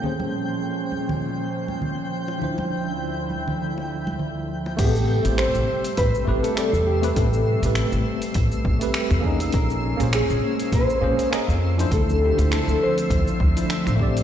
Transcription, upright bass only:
X:1
M:4/4
L:1/16
Q:"Swing 16ths" 1/4=101
K:Am
V:1 name="Upright bass" clef=bass
z16 | z16 | A,,,3 A,,, z A,,, z2 A,,, z A,,, z2 E,,3 | A,,,3 A,,, z A,,, z2 A,,, z A,,, z2 E,,3 |
_B,,,3 B,,, z B,,, z2 B,,, z B,,, z2 F,,3 | D,,3 D,, z D,, z2 D,, z D,, z2 A,,,3 |]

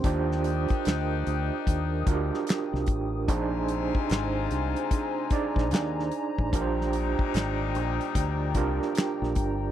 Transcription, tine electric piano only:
X:1
M:4/4
L:1/8
Q:"Swing 16ths" 1/4=74
K:Eb
V:1 name="Tine electric piano"
[DFGc]3 z2 [DF_G=GB]2 z | [DEAc]3 z2 [DEAd]2 z | [DFGBc]3 z2 [DFGB]2 z |]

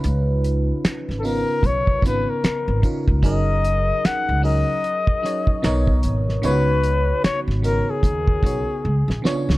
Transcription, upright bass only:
X:1
M:4/4
L:1/16
Q:"Swing 16ths" 1/4=75
K:C#mix
V:1 name="Upright bass" clef=bass
C,,4 z G,,,2 z B,,,2 G,,, z2 G,,, z C,, | F,,,4 z C,,2 z4 z B,,,2 G,,,2 | C,,4 z G,,,2 z D,,2 B,,, z C,, A,,, z C,, |]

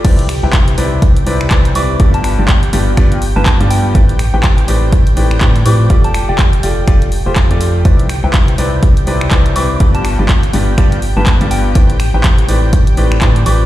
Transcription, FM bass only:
X:1
M:4/4
L:1/16
Q:"Swing 16ths" 1/4=123
K:C
V:1 name="FM bass" clef=bass
C,,3 C,,3 C,,4 C,,2 C,,2 C,,2 | G,,,3 G,,,3 G,,,2 G,,,3 G,,,2 G,,3 | A,,,3 A,,,3 A,,,4 A,,,2 A,,2 A,,2 | F,,,3 F,,,3 F,,,2 F,,,3 F,,,2 F,,3 |
C,,3 C,,3 C,,4 C,,2 C,,2 C,,2 | G,,,3 G,,,3 G,,,2 G,,,3 G,,,2 G,,,3 | A,,,3 A,,,3 A,,,4 A,,,2 A,,2 A,,,2 |]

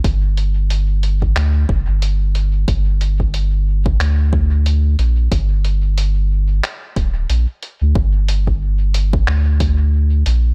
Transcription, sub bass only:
X:1
M:4/4
L:1/16
Q:"Swing 16ths" 1/4=91
K:Gm
V:1 name="Sub bass" clef=bass
G,,,8 D,,2 F,,, G,,,4- G,,, | G,,,8 D,,6 B,,,2 | G,,,8 z2 D,,,2 B,,, z2 D,, | G,,,8 D,,6 B,,,2 |]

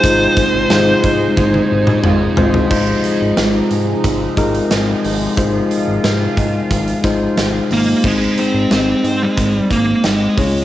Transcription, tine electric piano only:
X:1
M:4/4
L:1/16
Q:1/4=90
K:Ab
V:1 name="Tine electric piano"
[A,EFc]3 z [A,EFc]6 z4 [A,EFc]2 | [A,EFc]6 z4 [A,EFB]4 z2 | [A,EFc]6 z4 [A,EFc]4 z2 | [A,CEc]2 [A,CEc]6 z6 [A,D_F=Fd]2 |]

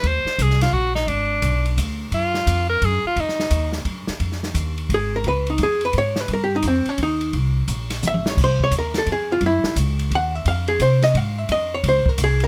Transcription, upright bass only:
X:1
M:3/4
L:1/8
Q:"Swing" 1/4=173
K:Ebdor
V:1 name="Upright bass" clef=bass
E,, z C,,2 B,,,2 | A,,,2 _C,,2 =D,,2 | G,,2 F,,2 G,, z | F,,2 E,,2 G,, z |
[K:Fm] F,,2 E,,2 A,,,2 | D,,2 F,,2 A,,2 | G,,2 F,, z E,,2 | C,,2 B,,,2 A,,,2 |
C,,2 E,,2 F,,2 | _G,, z D,,2 E,,2 | F,,2 C,2 A,,2 | F,,2 D,, z C,,2 |]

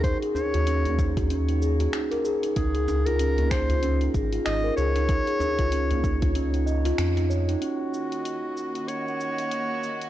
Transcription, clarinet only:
X:1
M:4/4
L:1/16
Q:"Swing 16ths" 1/4=95
K:Ebdor
V:1 name="Clarinet"
c2 d6 z8 | A3 B3 c4 z2 e2 d2- | d8- d2 z6 | G8 d8 |]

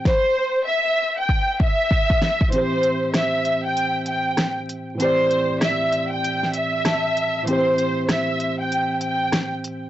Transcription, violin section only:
X:1
M:4/4
L:1/16
Q:"Swing 16ths" 1/4=97
K:Am
V:1 name="Violin section"
c4 e3 g3 e6 | c4 e3 g3 g3 z3 | c4 e3 g3 e6 | c4 e3 g3 g3 z3 |]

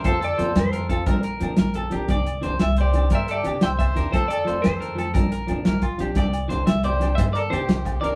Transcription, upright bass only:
X:1
M:12/8
L:1/8
Q:3/8=118
K:Cmix
V:1 name="Upright bass" clef=bass
F,,2 F,, F,,3 B,,,2 B,, B,,,2 B,,, | C,,2 C,, C,,3 G,,2 C, C,,2 E,, | F,,2 F,, F,,3 B,,,2 B,, B,,,2 B,,, | C,,2 C,, C,,3 G,,2 C, C,,2 C,, |]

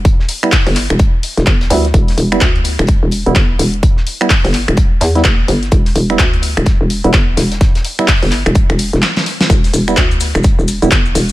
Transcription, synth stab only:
X:1
M:4/4
L:1/16
Q:"Swing 16ths" 1/4=127
K:Em
V:1 name="Synth stab"
z3 [G,B,E] z8 z2 [G,B,E] z | z3 [G,B,E] z6 z [G,B,E] z4 | z3 [G,B,E] z6 z [G,B,E] z4 | z3 [G,B,E] z6 z [G,B,E] z4 |
z3 [G,B,E] z12 | z3 [G,B,E] z6 z [G,B,E] z4 |]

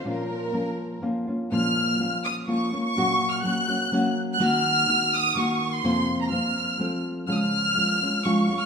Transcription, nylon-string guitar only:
X:1
M:3/4
L:1/8
Q:1/4=124
K:Bbm
V:1 name="Nylon-string guitar"
[B,,F,B,DF]2 [F,B,DF]2 [F,B,DF] [B,DF] | [B,,F,B,DF]2 [F,B,DF]2 [F,B,DF] [B,DF] | [B,,G,B,DG]2 [G,B,DG] [B,DG] [G,B,DG]2 | [E,B,EG]2 [E,B,EG]2 [E,B,EG]2 |
[F,,C,F,B,CF]2 [F,B,CF]2 [F,=A,CF]2 | [D,F,A,DF]2 [F,A,DF] [A,DF] [F,A,DF] [A,DF] |]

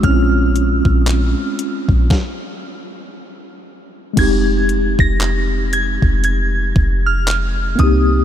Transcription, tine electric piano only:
X:1
M:4/4
L:1/8
Q:"Swing 16ths" 1/4=58
K:Fm
V:1 name="Tine electric piano"
[A,CD=EF]4 z4 | [A,CEG]6- [A,CEG] [B,CEG] |]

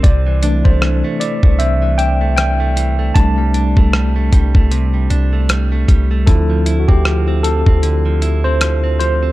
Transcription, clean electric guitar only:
X:1
M:4/4
L:1/16
Q:"Swing 16ths" 1/4=77
K:C
V:1 name="Clean electric guitar" clef=bass
C, E, D A, E, A, E, A, C, E, D A, E, A, E, A, | C, G, D A, G, A, G, A, C, G, D A, G, A, G, A, | D, F, E C F, C F, C D, F, E C F, C F, C |]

